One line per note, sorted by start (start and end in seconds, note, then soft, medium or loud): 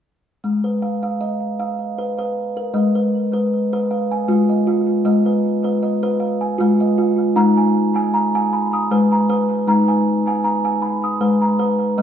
0.44 2.71 G#3 medium
0.64 1.20 B4 soft
0.82 1.02 F5 soft
1.03 1.41 F5 medium
1.21 1.80 D#5 soft
1.60 1.98 F5 medium
1.98 2.17 B4 medium
2.19 2.57 B4 medium
2.57 2.95 A#4 soft
2.74 3.13 G#3 medium
2.74 3.34 D#5 medium
2.95 3.32 B4 soft
3.33 3.72 B4 medium
3.73 4.11 B4 medium
3.91 4.50 F5 soft
4.11 4.68 G#5 soft
4.28 4.87 G#3 medium
4.28 4.66 F4 medium
4.49 5.04 D#5 medium
4.67 5.06 F4 medium
5.05 5.44 G#3 medium
5.05 5.65 D#5 medium
5.26 5.63 B4 soft
5.64 6.02 B4 medium
5.83 6.42 D#5 medium
6.03 6.42 B4 medium
6.20 6.80 F5 medium
6.41 6.98 G#5 medium
6.58 7.19 G#3 medium
6.58 6.97 F4 medium
6.80 7.37 D#5 medium
6.98 7.36 F4 medium
7.36 8.54 G#3 medium
7.36 7.75 D#4 medium
7.36 7.95 A#5 medium
7.58 7.94 G#5 medium
7.96 8.34 G#5 medium
8.14 8.72 A#5 medium
8.35 8.73 G#5 medium
8.53 9.11 B5 medium
8.73 9.29 D#6 medium
8.91 9.49 G#3 medium
8.91 9.28 B4 medium
9.12 9.67 A#5 medium
9.30 9.67 B4 medium
9.67 10.84 G#3 medium
9.67 10.06 D#4 medium
9.67 10.26 A#5 medium
9.88 10.26 G#5 medium
10.27 10.63 G#5 medium
10.44 11.03 A#5 medium
10.65 11.03 G#5 medium
10.82 11.41 B5 soft
11.04 11.59 D#6 medium
11.21 11.79 G#3 medium
11.21 11.58 B4 medium
11.42 11.97 A#5 medium
11.59 11.97 B4 medium
11.98 12.02 G#3 medium
11.98 12.02 D#5 medium